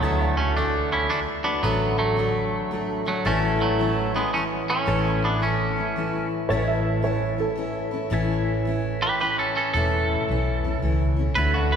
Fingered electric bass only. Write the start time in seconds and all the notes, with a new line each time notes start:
0.02 D2
1.63 A1
3.25 A1
4.87 A1
6.50 A1
8.11 A1
9.74 E1
10.30 B1
10.83 C#2
11.37 D2